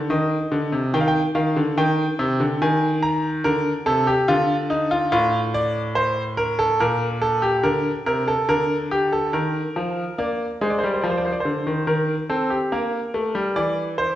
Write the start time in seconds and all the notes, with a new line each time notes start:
0.10 D#3 D#5
0.52 D3
0.72 C3
0.94 D#3 G5
1.01 F5
1.08 G5
1.35 D#3 F5
1.56 D3
1.78 D#3 G5
2.19 C3
2.40 D3
2.62 D#3 G#5
3.03 A#5
3.44 D3 A#4
3.86 C3 A4
4.07 G4
4.28 D3 F4
4.70 D#4
4.91 F4
5.12 A2 F4
5.54 D5
5.95 C5
6.37 A#4
6.59 A4
6.80 A#2 A#4
7.21 A4
7.42 G4
7.63 D3 A#4
8.06 C3 A#4
8.28 A4
8.49 D3 A#4
8.91 G4
9.12 A4
9.33 D#3 A#4
9.76 F3
10.18 A#3 D5
10.61 G#3 C5
10.70 D5
10.79 C5
10.84 G3 D5
10.94 C5
11.01 F3 D5
11.10 C5
11.17 D5
11.25 C5
11.33 D5
11.40 C5
11.45 D3
11.67 D#3
11.87 D#3 A#4
12.29 C4 A4
12.50 G4
12.72 A#3 A#4
13.14 A3
13.35 G3
13.56 E3 D5
13.98 C5